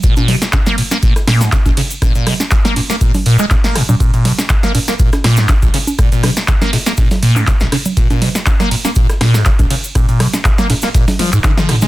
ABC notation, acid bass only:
X:1
M:4/4
L:1/16
Q:"Swing 16ths" 1/4=121
K:Bbm
V:1 name="Acid bass" clef=bass
B,, B,, C, z D, B, B,, B, B,, z B,, A,, D, B,,, D, z | B,, B,, C, z D, B, B,, B, B,, z B,, A, B,, B, A,, B,, | B,, B,, C, z D, B, B,, B, B,, z B,, A,, D, B,,, D, z | B,, B,, C, z D, B, B,, B, B,, z B,, A,, D, B,,, D, z |
B,, B,, C, z D, B, B,, B, B,, z B,, A,, D, B,,, D, z | B,, B,, C, z D, B, B,, B, B,, z F, A,, E, F, D, A, |]